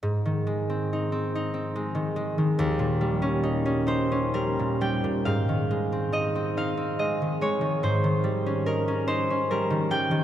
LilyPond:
<<
  \new Staff \with { instrumentName = "Harp" } { \time 6/8 \key aes \major \tempo 4. = 47 r2. | r4. c''8 bes'8 g''8 | f''4 ees''8 f''8 ees''8 des''8 | c''4 bes'8 c''8 bes'8 g''8 | }
  \new Staff \with { instrumentName = "Harp" } { \clef bass \time 6/8 \key aes \major aes,16 ees16 aes16 c'16 ees'16 c'16 ees'16 c'16 aes16 ees16 aes16 ees16 | ees,16 bes,16 g16 des'16 ees'16 des'16 ees'16 des'16 g16 bes,16 g16 bes,16 | aes,16 ees16 aes16 c'16 ees'16 c'16 ees'16 c'16 aes16 ees16 aes16 ees16 | aes,16 ees16 g16 des'16 ees'16 des'16 ees'16 des'16 g16 ees16 g16 ees16 | }
>>